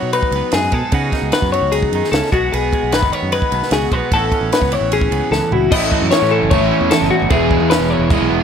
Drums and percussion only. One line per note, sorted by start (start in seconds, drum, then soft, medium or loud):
0.13 ride medium
0.23 kick medium
0.32 ride medium
0.52 snare loud
0.52 ride medium
0.72 kick medium
0.72 ride medium
0.92 kick loud
0.92 ride medium
1.12 kick medium
1.12 snare soft
1.12 ride medium
1.32 snare loud
1.32 ride medium
1.42 kick medium
1.54 ride medium
1.72 ride medium
1.83 kick medium
1.93 ride medium
2.04 snare soft
2.13 snare loud
2.13 ride medium
2.24 snare soft
2.33 kick loud
2.33 ride medium
2.54 ride medium
2.73 kick medium
2.73 ride medium
2.92 snare loud
2.92 ride medium
3.03 kick medium
3.13 ride medium
3.32 ride medium
3.42 kick medium
3.52 ride medium
3.63 snare soft
3.71 snare loud
3.71 ride medium
3.92 kick medium
3.92 ride medium
4.12 kick loud
4.12 ride medium
4.32 kick medium
4.32 ride medium
4.52 snare loud
4.52 ride medium
4.62 kick medium
4.72 ride medium
4.92 ride medium
5.01 kick medium
5.12 ride medium
5.33 snare medium
5.52 floor tom medium
5.72 kick loud
5.72 crash loud
5.72 crash medium
5.92 kick medium
6.11 snare loud
6.11 crash medium
6.51 kick loud
6.51 crash medium
6.91 snare loud
6.91 crash medium
7.30 kick loud
7.30 crash medium
7.51 kick medium
7.71 snare loud
7.71 crash medium
8.10 kick loud
8.10 crash medium